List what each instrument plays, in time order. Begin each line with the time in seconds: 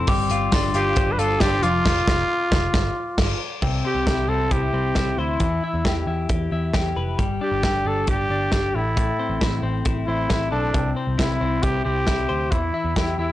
Already playing: clean electric guitar F3 C4 E4 A4, glockenspiel C6
0.07 picked electric bass G1, clean electric guitar G3, glockenspiel D6, kick, hi-hat pedal, open hi-hat
0.30 picked electric bass G1, clean electric guitar F4, hi-hat pedal, open hi-hat, tambourine
0.52 picked electric bass G1, clean electric guitar D4, glockenspiel C6, kick, snare, hi-hat pedal, open hi-hat, tambourine
0.74 picked electric bass G1, clean electric guitar F4, trumpet G4, hi-hat pedal, open hi-hat, tambourine
0.95 picked electric bass G1, clean electric guitar C5, kick, hi-hat pedal, open hi-hat, tambourine
1.12 trumpet B4
1.18 picked electric bass G1, clean electric guitar F4, trumpet A4, hi-hat pedal, open hi-hat, tambourine
1.40 picked electric bass G1, clean electric guitar D4, trumpet G4, kick, snare, hi-hat pedal, open hi-hat, tambourine
1.62 picked electric bass F1, clean electric guitar F3, trumpet F4, glockenspiel D6, hi-hat pedal, open hi-hat, tambourine
1.85 picked electric bass F1, kick, snare, crash
2.07 picked electric bass F1, kick, snare
2.51 picked electric bass F1, kick, snare
2.74 picked electric bass G1, kick, snare
3.18 picked electric bass G1, kick, snare, crash
3.62 picked electric bass C2, clean electric guitar C3, kick, crash
3.85 clean electric guitar C4, trumpet G4
3.95 picked electric bass C2
4.06 picked electric bass C2, clean electric guitar E4, kick, snare, closed hi-hat
4.28 picked electric bass C2, clean electric guitar C4, trumpet A4
4.51 picked electric bass C2, clean electric guitar E4, trumpet G4, kick, closed hi-hat
4.73 picked electric bass C2, clean electric guitar C4
4.95 picked electric bass C2, clean electric guitar E4, kick, snare, closed hi-hat
5.17 picked electric bass D2, trumpet E4, clean electric guitar C5
5.40 picked electric bass E2, clean electric guitar E3, kick, closed hi-hat
5.64 clean electric guitar E4
5.74 picked electric bass E2
5.85 picked electric bass E2, clean electric guitar G4, kick, snare, closed hi-hat
6.07 picked electric bass E2, clean electric guitar E4
6.29 picked electric bass E2, clean electric guitar G4, kick, closed hi-hat
6.52 picked electric bass E2, clean electric guitar E4
6.74 picked electric bass E2, clean electric guitar G4, kick, snare, closed hi-hat
6.97 picked electric bass F1, clean electric guitar B4
7.19 picked electric bass G1, clean electric guitar G3, kick, closed hi-hat
7.41 clean electric guitar D4, trumpet G4
7.51 picked electric bass G1
7.63 picked electric bass G1, clean electric guitar G4, kick, snare, closed hi-hat
7.85 picked electric bass G1, clean electric guitar D4, trumpet A4
8.07 picked electric bass G1, clean electric guitar G4, trumpet G4, kick, closed hi-hat
8.30 picked electric bass G1, clean electric guitar D4
8.52 picked electric bass G1, clean electric guitar G4, kick, snare, closed hi-hat
8.74 picked electric bass A1, clean electric guitar A2, trumpet E4
8.97 clean electric guitar A2, kick, closed hi-hat
9.19 clean electric guitar C4
9.30 picked electric bass A1
9.41 picked electric bass A1, clean electric guitar E4, kick, snare, closed hi-hat
9.63 picked electric bass A1, clean electric guitar C4
9.85 picked electric bass A1, clean electric guitar E4, kick, closed hi-hat
10.07 picked electric bass A1, clean electric guitar C4, trumpet E4
10.30 picked electric bass A1, clean electric guitar E4, kick, snare, closed hi-hat
10.51 picked electric bass B1, trumpet D4, clean electric guitar A4
10.74 picked electric bass C2, clean electric guitar C3, kick, closed hi-hat
10.96 clean electric guitar C4
11.07 picked electric bass C2
11.18 picked electric bass C2, clean electric guitar E4, trumpet E4, kick, snare, closed hi-hat
11.41 picked electric bass C2, clean electric guitar C4
11.62 picked electric bass C2, clean electric guitar E4, trumpet G4, kick, closed hi-hat
11.85 picked electric bass C2, clean electric guitar C4, trumpet G4
12.07 picked electric bass C2, clean electric guitar E4, kick, snare, closed hi-hat
12.29 picked electric bass D2, clean electric guitar C5
12.51 picked electric bass E2, clean electric guitar E3, trumpet E4, kick, closed hi-hat
12.74 clean electric guitar E4
12.84 picked electric bass E2
12.96 picked electric bass E2, trumpet E4, clean electric guitar G4, kick, snare, closed hi-hat
13.18 picked electric bass E2, trumpet E4, clean electric guitar E4